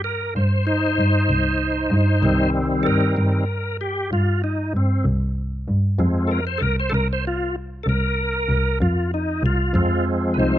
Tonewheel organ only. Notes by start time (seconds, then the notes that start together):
0.04 A#4
0.36 C5
0.67 D#4 C5
2.22 D#3 G3 C4
2.83 A4 A#4
3.16 D#3 G3 C4
3.81 G4
4.13 F4
4.44 D#4
4.76 C4
5.99 F3 G#3 C4
6.27 A4 A#4
6.47 C5
6.58 A4
6.62 A#4
6.80 C5
6.90 A4
6.94 A#4
7.13 C5
7.27 F4
7.83 A4
7.89 A#4
8.82 F4
9.14 D#4
9.46 F4
9.74 F3 G#3 C4
10.34 B4
10.38 D#4 C5